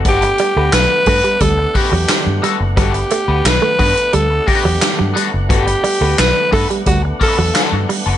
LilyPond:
<<
  \new Staff \with { instrumentName = "Alto saxophone" } { \time 4/4 \key g \major \tempo 4 = 88 g'4 b'4 a'8 g'4 r8 | g'4 b'4 a'8 g'4 r8 | g'4 b'8 a'8 fis'8 a'4 r8 | }
  \new Staff \with { instrumentName = "Clean electric guitar" } { \time 4/4 \key g \major <b fis' a'>16 r8 <b fis' b'>16 r8 <b fis' b'>16 r8. <b fis' b'>16 r8. <b fis' a'>16 r16 | <b fis' a'>16 r8 <b fis' b'>16 r8 <b fis' b'>16 r8. <b fis' b'>16 r8. <b fis' a'>16 r16 | <b fis' a'>16 r8 <b fis' b'>16 r8 <b fis' b'>16 r8. <b fis' b'>16 r16 <b fis' a'>16 r8 <b fis' a'>16 | }
  \new Staff \with { instrumentName = "Tonewheel organ" } { \time 4/4 \key g \major <a b d' fis''>1~ | <a b d' fis''>1~ | <a b d' fis''>1 | }
  \new Staff \with { instrumentName = "Clean electric guitar" } { \clef bass \time 4/4 \key g \major r8 g16 a16 r8 a16 g16 g16 r8 fis16 r8 g16 r16 | g16 r16 a16 r8 a16 b16 r16 g16 r8 fis16 r16 fis16 g16 r16 | r8 g16 a16 r8 a16 g16 g16 r8 fis16 r8 g16 r16 | }
  \new Staff \with { instrumentName = "Fingered electric bass" } { \clef bass \time 4/4 \key g \major g,,8 r16 d,16 b,,16 r16 g,16 r16 d,8 r16 e,16 r16 g,16 r16 fis,,16 | g,,8 r16 d,16 b,,16 r16 g,16 r16 d,8 r16 e,16 r16 g,16 r16 fis,,16 | g,,8 r16 d,16 b,,16 r16 g,16 r16 d,8 r16 e,16 r16 g,16 r16 fis,,16 | }
  \new DrumStaff \with { instrumentName = "Drums" } \drummode { \time 4/4 <hh bd>16 hh16 hh8 <hc hh sn>8 <hho bd>16 hh16 <hh bd>8 <hho bd>8 <hc hh sn>8 hh8 | <hh bd>16 hh16 hh8 <hc hh sn>8 <hho bd>16 hh16 hh8 <hho bd>8 <hc hh sn>8 hh8 | <hh bd>16 hh16 hho8 <hc hh sn>8 <hho bd>16 hh16 <hh bd>8 <hho bd>8 <hc hh sn>8 hho8 | }
>>